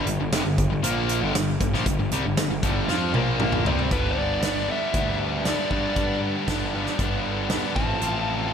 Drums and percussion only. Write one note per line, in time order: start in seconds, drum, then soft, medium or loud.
0.07 closed hi-hat medium
0.33 snare loud
0.33 closed hi-hat medium
0.58 kick medium
0.58 closed hi-hat medium
0.84 closed hi-hat medium
1.09 closed hi-hat medium
1.35 snare loud
1.35 closed hi-hat loud
1.60 kick medium
1.60 closed hi-hat medium
1.74 snare soft
1.86 kick loud
1.86 closed hi-hat medium
2.12 closed hi-hat medium
2.37 snare loud
2.37 closed hi-hat medium
2.63 kick medium
2.63 closed hi-hat medium
2.89 snare medium
3.14 high tom medium
3.40 mid tom medium
3.52 mid tom medium
3.66 floor tom medium
3.79 floor tom medium
3.91 kick loud
3.91 closed hi-hat medium
4.43 snare medium
4.43 closed hi-hat medium
4.94 kick medium
4.94 closed hi-hat medium
5.45 snare medium
5.45 closed hi-hat medium
5.71 kick medium
5.96 kick loud
5.96 closed hi-hat medium
6.48 kick medium
6.48 snare loud
6.48 closed hi-hat medium
6.86 snare soft
6.99 kick loud
6.99 closed hi-hat medium
7.50 snare loud
7.50 closed hi-hat soft
7.76 kick medium
8.02 closed hi-hat medium